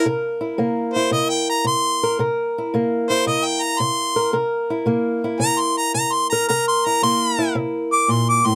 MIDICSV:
0, 0, Header, 1, 3, 480
1, 0, Start_track
1, 0, Tempo, 536193
1, 37, Time_signature, 4, 2, 24, 8
1, 7654, End_track
2, 0, Start_track
2, 0, Title_t, "Harmonica"
2, 0, Program_c, 0, 22
2, 842, Note_on_c, 0, 72, 96
2, 995, Note_off_c, 0, 72, 0
2, 1009, Note_on_c, 0, 75, 86
2, 1159, Note_off_c, 0, 75, 0
2, 1164, Note_on_c, 0, 79, 89
2, 1317, Note_off_c, 0, 79, 0
2, 1339, Note_on_c, 0, 82, 82
2, 1484, Note_off_c, 0, 82, 0
2, 1499, Note_on_c, 0, 84, 100
2, 1955, Note_off_c, 0, 84, 0
2, 2771, Note_on_c, 0, 72, 103
2, 2921, Note_off_c, 0, 72, 0
2, 2931, Note_on_c, 0, 75, 92
2, 3092, Note_on_c, 0, 79, 91
2, 3105, Note_off_c, 0, 75, 0
2, 3237, Note_on_c, 0, 82, 92
2, 3251, Note_off_c, 0, 79, 0
2, 3395, Note_on_c, 0, 84, 102
2, 3408, Note_off_c, 0, 82, 0
2, 3863, Note_off_c, 0, 84, 0
2, 4841, Note_on_c, 0, 82, 109
2, 5009, Note_on_c, 0, 84, 96
2, 5022, Note_off_c, 0, 82, 0
2, 5160, Note_off_c, 0, 84, 0
2, 5171, Note_on_c, 0, 82, 96
2, 5316, Note_off_c, 0, 82, 0
2, 5322, Note_on_c, 0, 82, 99
2, 5481, Note_on_c, 0, 84, 90
2, 5494, Note_off_c, 0, 82, 0
2, 5635, Note_off_c, 0, 84, 0
2, 5641, Note_on_c, 0, 82, 97
2, 5795, Note_off_c, 0, 82, 0
2, 5806, Note_on_c, 0, 82, 98
2, 5958, Note_off_c, 0, 82, 0
2, 5981, Note_on_c, 0, 84, 93
2, 6138, Note_on_c, 0, 82, 97
2, 6152, Note_off_c, 0, 84, 0
2, 6284, Note_off_c, 0, 82, 0
2, 6296, Note_on_c, 0, 84, 108
2, 6752, Note_off_c, 0, 84, 0
2, 7098, Note_on_c, 0, 86, 100
2, 7266, Note_on_c, 0, 84, 87
2, 7279, Note_off_c, 0, 86, 0
2, 7407, Note_off_c, 0, 84, 0
2, 7423, Note_on_c, 0, 86, 99
2, 7578, Note_on_c, 0, 84, 100
2, 7591, Note_off_c, 0, 86, 0
2, 7654, Note_off_c, 0, 84, 0
2, 7654, End_track
3, 0, Start_track
3, 0, Title_t, "Steel-string acoustic guitar"
3, 0, Program_c, 1, 25
3, 0, Note_on_c, 1, 58, 60
3, 51, Note_on_c, 1, 48, 64
3, 53, Note_on_c, 1, 70, 69
3, 364, Note_on_c, 1, 64, 53
3, 494, Note_off_c, 1, 48, 0
3, 512, Note_off_c, 1, 58, 0
3, 519, Note_on_c, 1, 48, 67
3, 524, Note_on_c, 1, 58, 54
3, 856, Note_off_c, 1, 64, 0
3, 860, Note_on_c, 1, 64, 64
3, 969, Note_off_c, 1, 48, 0
3, 995, Note_on_c, 1, 48, 73
3, 1446, Note_off_c, 1, 48, 0
3, 1473, Note_on_c, 1, 48, 75
3, 1816, Note_off_c, 1, 70, 0
3, 1820, Note_on_c, 1, 70, 70
3, 1926, Note_off_c, 1, 48, 0
3, 1961, Note_on_c, 1, 48, 73
3, 1967, Note_off_c, 1, 70, 0
3, 1970, Note_on_c, 1, 70, 68
3, 1997, Note_off_c, 1, 64, 0
3, 2312, Note_on_c, 1, 64, 53
3, 2410, Note_off_c, 1, 48, 0
3, 2450, Note_on_c, 1, 48, 71
3, 2454, Note_off_c, 1, 58, 0
3, 2458, Note_on_c, 1, 58, 58
3, 2773, Note_off_c, 1, 64, 0
3, 2776, Note_on_c, 1, 64, 61
3, 2895, Note_off_c, 1, 48, 0
3, 2922, Note_on_c, 1, 48, 74
3, 3371, Note_off_c, 1, 48, 0
3, 3401, Note_on_c, 1, 48, 74
3, 3721, Note_off_c, 1, 70, 0
3, 3724, Note_on_c, 1, 70, 64
3, 3850, Note_off_c, 1, 48, 0
3, 3875, Note_on_c, 1, 48, 70
3, 3876, Note_off_c, 1, 70, 0
3, 3879, Note_on_c, 1, 70, 67
3, 3906, Note_off_c, 1, 64, 0
3, 4209, Note_on_c, 1, 64, 57
3, 4327, Note_off_c, 1, 48, 0
3, 4348, Note_on_c, 1, 48, 70
3, 4352, Note_off_c, 1, 58, 0
3, 4356, Note_on_c, 1, 58, 56
3, 4688, Note_off_c, 1, 64, 0
3, 4692, Note_on_c, 1, 64, 62
3, 4804, Note_off_c, 1, 48, 0
3, 4830, Note_on_c, 1, 48, 83
3, 5284, Note_off_c, 1, 48, 0
3, 5321, Note_on_c, 1, 48, 72
3, 5645, Note_off_c, 1, 70, 0
3, 5662, Note_on_c, 1, 70, 69
3, 5769, Note_off_c, 1, 48, 0
3, 5784, Note_off_c, 1, 64, 0
3, 5789, Note_off_c, 1, 70, 0
3, 5814, Note_on_c, 1, 48, 70
3, 5818, Note_on_c, 1, 70, 67
3, 6144, Note_on_c, 1, 64, 53
3, 6255, Note_off_c, 1, 48, 0
3, 6275, Note_off_c, 1, 58, 0
3, 6287, Note_on_c, 1, 48, 65
3, 6293, Note_on_c, 1, 58, 60
3, 6601, Note_off_c, 1, 64, 0
3, 6611, Note_on_c, 1, 64, 62
3, 6731, Note_off_c, 1, 48, 0
3, 6759, Note_on_c, 1, 48, 80
3, 7207, Note_off_c, 1, 48, 0
3, 7235, Note_on_c, 1, 46, 61
3, 7560, Note_off_c, 1, 46, 0
3, 7563, Note_on_c, 1, 45, 66
3, 7654, Note_off_c, 1, 45, 0
3, 7654, Note_off_c, 1, 58, 0
3, 7654, Note_off_c, 1, 64, 0
3, 7654, Note_off_c, 1, 70, 0
3, 7654, End_track
0, 0, End_of_file